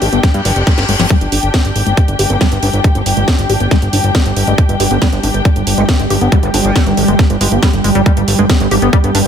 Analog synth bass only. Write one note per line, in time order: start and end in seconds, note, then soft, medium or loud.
0.02 0.08 G#1 loud
0.13 0.19 G1 medium
0.34 0.41 G2 medium
0.45 0.52 G1 loud
0.56 0.63 F1 medium
0.78 0.85 G1 medium
0.89 0.95 G1 loud
1.00 1.06 G1 medium
1.21 1.28 G1 medium
1.32 1.39 G1 medium
1.43 1.50 G1 medium
1.65 1.72 G1 medium
1.76 1.82 G#1 loud
1.87 1.93 G1 medium
2.08 2.15 G1 medium
2.19 2.26 G1 loud
2.30 2.37 G1 medium
2.52 2.58 G1 medium
2.63 2.69 G1 loud
2.73 2.80 G1 medium
2.95 3.02 G1 medium
3.06 3.13 G1 medium
3.17 3.24 G1 medium
3.39 3.45 G1 medium
3.50 3.56 G#1 loud
3.60 3.67 G1 medium
3.82 3.89 G1 medium
3.93 4.00 G1 loud
4.04 4.11 G1 medium
4.26 4.32 G1 medium
4.36 4.43 G1 loud
4.47 4.54 G1 medium
4.69 4.76 G1 medium
4.80 4.87 G1 loud
4.91 4.98 G1 medium
5.13 5.19 G1 medium
5.23 5.30 G#1 loud
5.34 5.41 G1 medium
5.56 5.63 G1 medium
5.67 5.74 G1 loud
5.78 5.85 G1 medium
6.00 6.06 G1 medium
6.10 6.17 G1 loud
6.21 6.28 G1 medium
6.43 6.50 G1 medium
6.54 6.61 G1 loud
6.65 6.71 G1 medium
6.86 6.93 G1 medium
6.97 7.04 G#1 loud
7.08 7.15 G1 medium
7.30 7.37 G1 medium
7.41 7.48 G1 loud
7.52 7.58 G1 medium
7.73 7.80 G1 medium
7.84 7.91 G1 loud
7.95 8.02 G1 medium
8.17 8.24 G1 medium
8.28 8.35 G1 loud
8.39 8.45 G1 medium
8.60 8.67 G1 medium
8.71 8.78 G#1 loud
8.82 8.89 G1 medium
9.04 9.11 G1 medium
9.15 9.21 G1 loud